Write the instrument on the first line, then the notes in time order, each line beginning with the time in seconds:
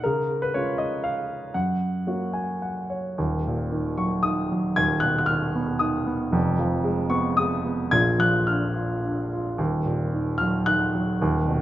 grand piano
0.04 C#3 A#4
0.42 B4
0.54 G#3 C#4 F4 C#5
0.78 D#5
1.04 F5
1.54 F#2 F#5
2.07 A#3 C#4 F#4
2.33 G#5
2.62 F#5
2.90 C#5
3.18 D#1 D#2
3.47 A#2
3.72 D#3
3.98 F#3 C#6
4.23 D#3 D#6
4.52 F#3
4.76 D#1 D#2 G#6
5.00 B2 F#6
5.18 F#6
5.26 F6
5.31 D#3
5.56 B3
5.79 D#3 D#6
6.07 B3
6.32 F1 F2
6.59 F3
6.84 G#3
7.10 B3 C#6
7.37 G#3 D#6
7.65 B3
7.91 A#1 A#2 G#6
8.18 F3 F#6
8.47 D4 F6
8.75 F4
9.03 D4
9.33 F4
9.58 D#1 D#2
9.86 A#2
10.14 D#3
10.38 F#3 F6
10.66 D#3 F#6
10.95 F#3
11.21 D#1 D#2
11.49 B2